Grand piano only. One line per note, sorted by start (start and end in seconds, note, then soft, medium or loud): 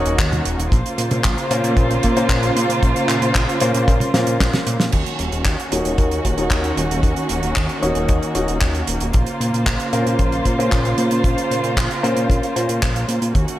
0.00 0.70 D#4 medium
0.00 0.70 F#4 medium
0.00 0.70 A#4 medium
0.00 0.70 C#5 medium
1.51 2.13 C#4 medium
1.51 2.13 F4 medium
1.51 2.13 A#4 medium
1.51 2.13 C5 medium
2.17 3.58 C#4 medium
2.17 3.58 F4 medium
2.17 3.58 A#4 medium
2.17 3.58 C5 medium
3.61 4.11 C#4 loud
3.61 4.11 F4 medium
3.61 4.11 A#4 medium
3.61 4.11 C5 loud
4.14 4.91 C#4 medium
4.14 4.91 F4 medium
4.14 4.91 A#4 medium
4.14 4.91 C5 medium
5.72 6.34 D#4 medium
5.72 6.34 F#4 medium
5.72 6.34 A#4 medium
5.72 6.34 C#5 medium
6.38 7.79 D#4 medium
6.38 7.79 F#4 medium
6.38 7.79 A#4 medium
6.38 7.79 C#5 medium
7.82 8.32 D#4 loud
7.82 8.32 F#4 medium
7.82 8.32 A#4 medium
7.82 8.32 C#5 loud
8.35 9.12 D#4 medium
8.35 9.12 F#4 medium
8.35 9.12 A#4 medium
8.35 9.12 C#5 medium
9.93 10.55 C#4 medium
9.93 10.55 F4 medium
9.93 10.55 A#4 medium
9.93 10.55 C5 medium
10.59 12.00 C#4 medium
10.59 12.00 F4 medium
10.59 12.00 A#4 medium
10.59 12.00 C5 medium
12.03 12.53 C#4 loud
12.03 12.53 F4 medium
12.03 12.53 A#4 medium
12.03 12.53 C5 loud
12.56 13.33 C#4 medium
12.56 13.33 F4 medium
12.56 13.33 A#4 medium
12.56 13.33 C5 medium